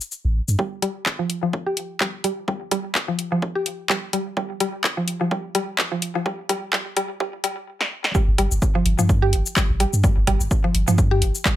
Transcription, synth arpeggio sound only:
0.59 0.63 G3 medium
0.82 0.85 G3 loud
1.19 1.22 F3 medium
1.43 1.46 F3 medium
1.66 1.70 G4 medium
2.01 2.05 G3 medium
2.24 2.28 G3 medium
2.48 2.52 G3 medium
2.72 2.74 G3 loud
3.08 3.11 F3 medium
3.32 3.35 F3 medium
3.55 3.59 G4 medium
3.90 3.94 G3 medium
4.13 4.17 G3 medium
4.37 4.41 G3 medium
4.60 4.63 G3 loud
4.97 5.00 F3 medium
5.21 5.24 F3 medium
5.31 5.35 G3 medium
5.55 5.57 G3 loud
5.92 5.95 F3 medium
6.15 6.18 F3 medium
6.26 6.30 G3 medium
6.49 6.52 G3 loud
6.73 6.77 G3 medium
6.97 6.99 G3 loud
7.20 7.24 G3 medium
7.44 7.48 G3 medium
8.15 8.19 G3 medium
8.38 8.41 G3 loud
8.75 8.78 F3 medium
8.99 9.02 F3 medium
9.22 9.26 G4 medium
9.57 9.60 G3 medium
9.80 9.84 G3 medium
10.04 10.08 G3 medium
10.27 10.30 G3 loud
10.64 10.67 F3 medium
10.88 10.91 F3 medium
11.11 11.14 G4 medium
11.45 11.49 G3 medium

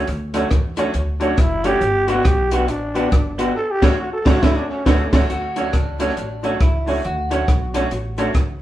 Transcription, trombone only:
1.23 1.41 D4 medium
1.40 1.67 E4 loud
1.66 2.10 G4 loud
2.09 2.28 F#4 loud
2.26 2.54 G4 loud
2.53 2.71 F#4 loud
2.70 3.39 D4 medium
3.56 3.73 A4 loud
3.71 3.87 G4 loud
3.85 3.99 F#4 loud
3.99 4.13 F#4 medium
4.13 4.29 A4 loud
4.27 4.44 F#4 loud
4.42 4.58 E4 loud
4.57 4.73 D4 medium
4.71 4.88 C#4 medium
4.86 5.00 B3 medium
5.01 5.28 A3 medium

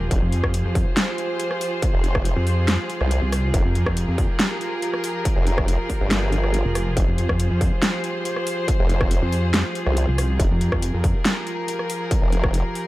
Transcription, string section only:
0.00 12.87 F3 medium
0.00 12.87 F4 medium
0.00 12.87 G4 medium
0.00 12.87 G#4 medium
0.11 3.53 C5 medium
3.54 6.96 A#4 medium
6.97 10.38 C5 medium
10.40 12.87 A#4 medium

